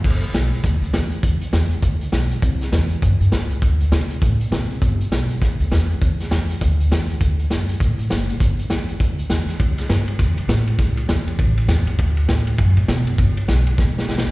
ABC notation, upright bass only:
X:1
M:4/4
L:1/8
Q:"Swing" 1/4=201
K:G
V:1 name="Upright bass" clef=bass
G,,,2 B,,,2 D,, D,, E,,2 | E,,2 E,,2 D,,2 B,,,2 | C,,2 E,,2 G,, G,, ^C,,2 | D,,2 C,2 A,,2 C,2 |
G,,,2 B,,,2 D,, D,, E,,2 | E,,2 E,,2 D,,2 E,,2 | D,,2 F,,2 A,, A,, F,,,2 | G,,,2 E,,2 D,,2 E,,2 |
C,,2 G,,2 E,, G,, A,,2 | C,,2 E,,2 A,,,2 E,, G,, | D,,2 A,,2 F,, A,, B,,2 | G,,,2 B,,,2 E,,,2 B,,, B,,, |]